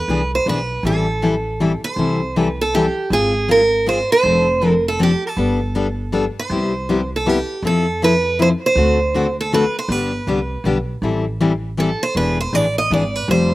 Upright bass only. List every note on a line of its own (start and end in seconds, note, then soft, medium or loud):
0.08 0.40 C2 medium
0.46 0.78 B1 medium
0.83 1.74 A1 medium
1.96 2.87 C2 medium
3.10 4.01 G#1 medium
4.23 5.14 F1 medium
5.37 6.27 G1 medium
6.50 7.40 C2 medium
7.62 8.53 F2 medium
8.75 9.66 D2 medium
9.88 10.19 G1 medium
10.27 10.59 C2 medium
10.64 10.96 B1 medium
11.02 11.92 A1 medium
12.15 12.45 E1 medium
12.53 12.85 A1 medium
12.90 13.23 G#1 medium
13.28 13.54 F1 medium